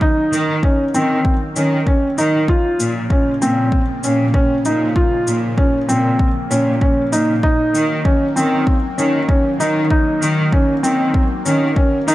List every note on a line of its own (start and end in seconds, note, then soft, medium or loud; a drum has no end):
0.00 2.45 D#3 medium
0.00 2.45 F#3 medium
0.00 2.44 A#3 medium
0.00 0.40 D#4 medium
0.00 kick medium
0.32 0.53 D#3 medium
0.32 shaker medium
0.63 0.83 C#4 medium
0.63 kick medium
0.94 1.15 D#3 medium
0.94 1.33 C4 medium
0.94 shaker medium
1.25 kick medium
1.56 1.77 D#3 medium
1.56 1.75 C#4 medium
1.56 shaker medium
1.87 2.07 C#4 medium
1.87 kick loud
2.18 2.39 D#3 medium
2.18 2.37 D#4 medium
2.18 shaker medium
2.48 7.40 C#3 medium
2.48 7.40 F3 medium
2.48 12.15 A#3 medium
2.48 2.88 F4 medium
2.48 kick medium
2.80 3.01 A#2 medium
2.80 shaker medium
3.10 3.31 C#4 medium
3.10 kick medium
3.41 3.63 A#2 medium
3.41 3.80 C4 medium
3.41 shaker medium
3.72 kick medium
4.03 4.24 A#2 medium
4.03 4.23 C#4 medium
4.03 shaker medium
4.34 4.54 C#4 medium
4.34 kick loud
4.65 4.86 A#2 medium
4.65 4.85 D#4 medium
4.65 shaker medium
4.96 5.35 F4 medium
4.96 kick medium
5.27 5.48 A#2 medium
5.27 shaker soft
5.58 5.77 C#4 medium
5.58 kick medium
5.88 6.10 A#2 medium
5.88 6.27 C4 medium
5.88 shaker medium
6.19 kick medium
6.50 6.72 A#2 medium
6.50 6.70 C#4 medium
6.50 shaker medium
6.81 7.01 C#4 medium
6.81 kick medium
7.12 7.33 A#2 medium
7.12 7.32 D#4 medium
7.12 shaker soft
7.43 12.15 D#3 medium
7.43 12.15 F#3 medium
7.43 7.82 D#4 medium
7.43 kick medium
7.74 7.95 D#3 medium
7.74 shaker medium
8.05 8.24 C#4 medium
8.05 kick medium
8.36 8.57 D#3 medium
8.36 8.75 C4 medium
8.36 shaker medium
8.67 kick medium
8.98 9.19 D#3 medium
8.98 9.17 C#4 medium
8.98 shaker soft
9.29 9.48 C#4 medium
9.29 kick medium
9.60 9.81 D#3 medium
9.60 9.79 D#4 medium
9.60 shaker soft
9.90 10.29 D#4 medium
9.90 kick loud
10.22 10.43 D#3 medium
10.22 shaker medium
10.52 10.72 C#4 medium
10.52 kick loud
10.83 11.05 D#3 medium
10.83 11.22 C4 medium
10.83 shaker medium
11.14 kick medium
11.45 11.67 D#3 medium
11.45 11.65 C#4 medium
11.45 shaker medium
11.76 11.96 C#4 medium
11.76 kick loud
12.08 12.15 D#3 medium
12.08 12.15 D#4 medium
12.08 shaker medium